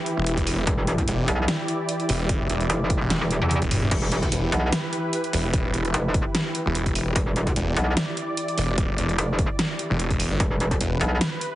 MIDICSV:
0, 0, Header, 1, 5, 480
1, 0, Start_track
1, 0, Tempo, 405405
1, 794, Time_signature, 4, 2, 24, 8
1, 13675, End_track
2, 0, Start_track
2, 0, Title_t, "Supersaw synth"
2, 0, Program_c, 0, 81
2, 0, Note_on_c, 0, 52, 87
2, 0, Note_on_c, 0, 64, 82
2, 0, Note_on_c, 0, 67, 79
2, 0, Note_on_c, 0, 71, 96
2, 783, Note_off_c, 0, 71, 0
2, 794, Note_on_c, 0, 74, 95
2, 4622, Note_off_c, 0, 74, 0
2, 4635, Note_on_c, 0, 71, 99
2, 8462, Note_off_c, 0, 71, 0
2, 8473, Note_on_c, 0, 74, 98
2, 12301, Note_off_c, 0, 74, 0
2, 12314, Note_on_c, 0, 71, 98
2, 13675, Note_off_c, 0, 52, 0
2, 13675, Note_off_c, 0, 64, 0
2, 13675, Note_off_c, 0, 67, 0
2, 13675, Note_off_c, 0, 71, 0
2, 13675, End_track
3, 0, Start_track
3, 0, Title_t, "Wobble bass"
3, 0, Program_c, 1, 39
3, 794, Note_on_c, 1, 28, 102
3, 1257, Note_off_c, 1, 28, 0
3, 1515, Note_on_c, 1, 35, 97
3, 1737, Note_off_c, 1, 35, 0
3, 3194, Note_on_c, 1, 29, 98
3, 3543, Note_off_c, 1, 29, 0
3, 3804, Note_on_c, 1, 28, 97
3, 4023, Note_off_c, 1, 28, 0
3, 4044, Note_on_c, 1, 40, 97
3, 4263, Note_off_c, 1, 40, 0
3, 4634, Note_on_c, 1, 28, 99
3, 5096, Note_off_c, 1, 28, 0
3, 5354, Note_on_c, 1, 35, 96
3, 5576, Note_off_c, 1, 35, 0
3, 7035, Note_on_c, 1, 29, 96
3, 7384, Note_off_c, 1, 29, 0
3, 8474, Note_on_c, 1, 28, 104
3, 8936, Note_off_c, 1, 28, 0
3, 9194, Note_on_c, 1, 35, 97
3, 9417, Note_off_c, 1, 35, 0
3, 10874, Note_on_c, 1, 29, 96
3, 11224, Note_off_c, 1, 29, 0
3, 12314, Note_on_c, 1, 28, 99
3, 12777, Note_off_c, 1, 28, 0
3, 13034, Note_on_c, 1, 35, 98
3, 13256, Note_off_c, 1, 35, 0
3, 13675, End_track
4, 0, Start_track
4, 0, Title_t, "Detuned saw bass"
4, 0, Program_c, 2, 39
4, 205, Note_on_c, 2, 28, 97
4, 777, Note_off_c, 2, 28, 0
4, 1275, Note_on_c, 2, 28, 97
4, 1497, Note_off_c, 2, 28, 0
4, 2474, Note_on_c, 2, 28, 96
4, 2936, Note_off_c, 2, 28, 0
4, 2954, Note_on_c, 2, 28, 96
4, 3177, Note_off_c, 2, 28, 0
4, 3564, Note_on_c, 2, 28, 99
4, 3783, Note_off_c, 2, 28, 0
4, 4284, Note_on_c, 2, 28, 97
4, 4504, Note_off_c, 2, 28, 0
4, 4525, Note_on_c, 2, 28, 94
4, 4617, Note_off_c, 2, 28, 0
4, 5114, Note_on_c, 2, 28, 97
4, 5336, Note_off_c, 2, 28, 0
4, 6314, Note_on_c, 2, 28, 96
4, 6776, Note_off_c, 2, 28, 0
4, 6794, Note_on_c, 2, 28, 96
4, 7016, Note_off_c, 2, 28, 0
4, 7883, Note_on_c, 2, 28, 96
4, 8456, Note_off_c, 2, 28, 0
4, 8953, Note_on_c, 2, 28, 98
4, 9176, Note_off_c, 2, 28, 0
4, 10154, Note_on_c, 2, 28, 99
4, 10616, Note_off_c, 2, 28, 0
4, 10633, Note_on_c, 2, 28, 92
4, 10856, Note_off_c, 2, 28, 0
4, 11725, Note_on_c, 2, 28, 96
4, 12184, Note_off_c, 2, 28, 0
4, 12205, Note_on_c, 2, 31, 97
4, 12297, Note_off_c, 2, 31, 0
4, 12795, Note_on_c, 2, 28, 98
4, 13017, Note_off_c, 2, 28, 0
4, 13675, End_track
5, 0, Start_track
5, 0, Title_t, "Drums"
5, 74, Note_on_c, 9, 42, 57
5, 192, Note_off_c, 9, 42, 0
5, 314, Note_on_c, 9, 42, 75
5, 432, Note_off_c, 9, 42, 0
5, 444, Note_on_c, 9, 42, 36
5, 445, Note_on_c, 9, 36, 61
5, 554, Note_on_c, 9, 46, 88
5, 562, Note_off_c, 9, 42, 0
5, 563, Note_off_c, 9, 36, 0
5, 673, Note_off_c, 9, 46, 0
5, 794, Note_on_c, 9, 36, 117
5, 794, Note_on_c, 9, 42, 81
5, 913, Note_off_c, 9, 36, 0
5, 913, Note_off_c, 9, 42, 0
5, 1034, Note_on_c, 9, 42, 55
5, 1153, Note_off_c, 9, 42, 0
5, 1164, Note_on_c, 9, 42, 36
5, 1165, Note_on_c, 9, 36, 57
5, 1274, Note_off_c, 9, 42, 0
5, 1274, Note_on_c, 9, 42, 80
5, 1283, Note_off_c, 9, 36, 0
5, 1393, Note_off_c, 9, 42, 0
5, 1514, Note_on_c, 9, 42, 51
5, 1633, Note_off_c, 9, 42, 0
5, 1754, Note_on_c, 9, 38, 115
5, 1754, Note_on_c, 9, 42, 79
5, 1872, Note_off_c, 9, 38, 0
5, 1872, Note_off_c, 9, 42, 0
5, 1994, Note_on_c, 9, 42, 60
5, 2112, Note_off_c, 9, 42, 0
5, 2234, Note_on_c, 9, 42, 78
5, 2352, Note_off_c, 9, 42, 0
5, 2365, Note_on_c, 9, 42, 36
5, 2474, Note_on_c, 9, 46, 95
5, 2483, Note_off_c, 9, 42, 0
5, 2592, Note_off_c, 9, 46, 0
5, 2714, Note_on_c, 9, 36, 115
5, 2714, Note_on_c, 9, 42, 81
5, 2832, Note_off_c, 9, 36, 0
5, 2833, Note_off_c, 9, 42, 0
5, 2955, Note_on_c, 9, 42, 55
5, 3073, Note_off_c, 9, 42, 0
5, 3085, Note_on_c, 9, 42, 37
5, 3194, Note_off_c, 9, 42, 0
5, 3194, Note_on_c, 9, 42, 83
5, 3312, Note_off_c, 9, 42, 0
5, 3434, Note_on_c, 9, 36, 107
5, 3434, Note_on_c, 9, 42, 53
5, 3552, Note_off_c, 9, 36, 0
5, 3552, Note_off_c, 9, 42, 0
5, 3674, Note_on_c, 9, 38, 113
5, 3674, Note_on_c, 9, 42, 84
5, 3674, Note_on_c, 9, 48, 62
5, 3793, Note_off_c, 9, 38, 0
5, 3793, Note_off_c, 9, 42, 0
5, 3793, Note_off_c, 9, 48, 0
5, 3804, Note_on_c, 9, 48, 58
5, 3914, Note_on_c, 9, 42, 61
5, 3923, Note_off_c, 9, 48, 0
5, 4033, Note_off_c, 9, 42, 0
5, 4044, Note_on_c, 9, 47, 67
5, 4154, Note_off_c, 9, 47, 0
5, 4154, Note_on_c, 9, 42, 79
5, 4154, Note_on_c, 9, 47, 86
5, 4272, Note_off_c, 9, 42, 0
5, 4272, Note_off_c, 9, 47, 0
5, 4284, Note_on_c, 9, 36, 59
5, 4284, Note_on_c, 9, 42, 37
5, 4394, Note_on_c, 9, 45, 99
5, 4394, Note_on_c, 9, 46, 96
5, 4403, Note_off_c, 9, 36, 0
5, 4403, Note_off_c, 9, 42, 0
5, 4512, Note_off_c, 9, 45, 0
5, 4512, Note_off_c, 9, 46, 0
5, 4524, Note_on_c, 9, 45, 88
5, 4634, Note_on_c, 9, 36, 121
5, 4634, Note_on_c, 9, 42, 87
5, 4634, Note_on_c, 9, 49, 80
5, 4642, Note_off_c, 9, 45, 0
5, 4752, Note_off_c, 9, 36, 0
5, 4752, Note_off_c, 9, 42, 0
5, 4752, Note_off_c, 9, 49, 0
5, 4874, Note_on_c, 9, 42, 57
5, 4993, Note_off_c, 9, 42, 0
5, 5004, Note_on_c, 9, 36, 63
5, 5005, Note_on_c, 9, 42, 38
5, 5114, Note_off_c, 9, 42, 0
5, 5114, Note_on_c, 9, 42, 87
5, 5123, Note_off_c, 9, 36, 0
5, 5233, Note_off_c, 9, 42, 0
5, 5355, Note_on_c, 9, 42, 56
5, 5473, Note_off_c, 9, 42, 0
5, 5594, Note_on_c, 9, 38, 122
5, 5594, Note_on_c, 9, 42, 86
5, 5713, Note_off_c, 9, 38, 0
5, 5713, Note_off_c, 9, 42, 0
5, 5834, Note_on_c, 9, 42, 64
5, 5952, Note_off_c, 9, 42, 0
5, 6074, Note_on_c, 9, 42, 85
5, 6192, Note_off_c, 9, 42, 0
5, 6204, Note_on_c, 9, 42, 39
5, 6314, Note_on_c, 9, 46, 98
5, 6322, Note_off_c, 9, 42, 0
5, 6433, Note_off_c, 9, 46, 0
5, 6553, Note_on_c, 9, 42, 83
5, 6554, Note_on_c, 9, 36, 124
5, 6672, Note_off_c, 9, 36, 0
5, 6672, Note_off_c, 9, 42, 0
5, 6794, Note_on_c, 9, 42, 59
5, 6912, Note_off_c, 9, 42, 0
5, 6924, Note_on_c, 9, 42, 38
5, 7033, Note_off_c, 9, 42, 0
5, 7033, Note_on_c, 9, 42, 87
5, 7152, Note_off_c, 9, 42, 0
5, 7274, Note_on_c, 9, 36, 113
5, 7274, Note_on_c, 9, 42, 56
5, 7392, Note_off_c, 9, 36, 0
5, 7392, Note_off_c, 9, 42, 0
5, 7514, Note_on_c, 9, 38, 125
5, 7514, Note_on_c, 9, 42, 82
5, 7633, Note_off_c, 9, 38, 0
5, 7633, Note_off_c, 9, 42, 0
5, 7753, Note_on_c, 9, 42, 63
5, 7872, Note_off_c, 9, 42, 0
5, 7994, Note_on_c, 9, 42, 82
5, 8113, Note_off_c, 9, 42, 0
5, 8124, Note_on_c, 9, 36, 62
5, 8125, Note_on_c, 9, 42, 39
5, 8234, Note_on_c, 9, 46, 91
5, 8242, Note_off_c, 9, 36, 0
5, 8243, Note_off_c, 9, 42, 0
5, 8352, Note_off_c, 9, 46, 0
5, 8474, Note_on_c, 9, 36, 127
5, 8474, Note_on_c, 9, 42, 87
5, 8592, Note_off_c, 9, 36, 0
5, 8593, Note_off_c, 9, 42, 0
5, 8714, Note_on_c, 9, 42, 55
5, 8832, Note_off_c, 9, 42, 0
5, 8844, Note_on_c, 9, 36, 63
5, 8844, Note_on_c, 9, 42, 37
5, 8954, Note_off_c, 9, 42, 0
5, 8954, Note_on_c, 9, 42, 84
5, 8962, Note_off_c, 9, 36, 0
5, 9072, Note_off_c, 9, 42, 0
5, 9194, Note_on_c, 9, 42, 55
5, 9313, Note_off_c, 9, 42, 0
5, 9434, Note_on_c, 9, 38, 127
5, 9434, Note_on_c, 9, 42, 83
5, 9553, Note_off_c, 9, 38, 0
5, 9553, Note_off_c, 9, 42, 0
5, 9674, Note_on_c, 9, 42, 63
5, 9793, Note_off_c, 9, 42, 0
5, 9914, Note_on_c, 9, 42, 80
5, 10033, Note_off_c, 9, 42, 0
5, 10045, Note_on_c, 9, 42, 38
5, 10154, Note_on_c, 9, 46, 87
5, 10164, Note_off_c, 9, 42, 0
5, 10273, Note_off_c, 9, 46, 0
5, 10394, Note_on_c, 9, 36, 124
5, 10395, Note_on_c, 9, 42, 80
5, 10512, Note_off_c, 9, 36, 0
5, 10513, Note_off_c, 9, 42, 0
5, 10634, Note_on_c, 9, 42, 55
5, 10753, Note_off_c, 9, 42, 0
5, 10765, Note_on_c, 9, 42, 35
5, 10875, Note_off_c, 9, 42, 0
5, 10875, Note_on_c, 9, 42, 83
5, 10993, Note_off_c, 9, 42, 0
5, 11114, Note_on_c, 9, 36, 112
5, 11114, Note_on_c, 9, 42, 51
5, 11233, Note_off_c, 9, 36, 0
5, 11233, Note_off_c, 9, 42, 0
5, 11354, Note_on_c, 9, 38, 127
5, 11354, Note_on_c, 9, 42, 81
5, 11473, Note_off_c, 9, 38, 0
5, 11473, Note_off_c, 9, 42, 0
5, 11594, Note_on_c, 9, 42, 61
5, 11712, Note_off_c, 9, 42, 0
5, 11835, Note_on_c, 9, 42, 80
5, 11953, Note_off_c, 9, 42, 0
5, 11965, Note_on_c, 9, 36, 61
5, 11965, Note_on_c, 9, 42, 38
5, 12074, Note_on_c, 9, 46, 89
5, 12083, Note_off_c, 9, 36, 0
5, 12083, Note_off_c, 9, 42, 0
5, 12192, Note_off_c, 9, 46, 0
5, 12314, Note_on_c, 9, 36, 123
5, 12314, Note_on_c, 9, 42, 77
5, 12432, Note_off_c, 9, 42, 0
5, 12433, Note_off_c, 9, 36, 0
5, 12554, Note_on_c, 9, 42, 52
5, 12673, Note_off_c, 9, 42, 0
5, 12684, Note_on_c, 9, 36, 61
5, 12684, Note_on_c, 9, 42, 36
5, 12795, Note_off_c, 9, 42, 0
5, 12795, Note_on_c, 9, 42, 78
5, 12803, Note_off_c, 9, 36, 0
5, 12913, Note_off_c, 9, 42, 0
5, 13034, Note_on_c, 9, 42, 51
5, 13152, Note_off_c, 9, 42, 0
5, 13273, Note_on_c, 9, 38, 123
5, 13273, Note_on_c, 9, 42, 78
5, 13392, Note_off_c, 9, 38, 0
5, 13392, Note_off_c, 9, 42, 0
5, 13514, Note_on_c, 9, 42, 58
5, 13632, Note_off_c, 9, 42, 0
5, 13675, End_track
0, 0, End_of_file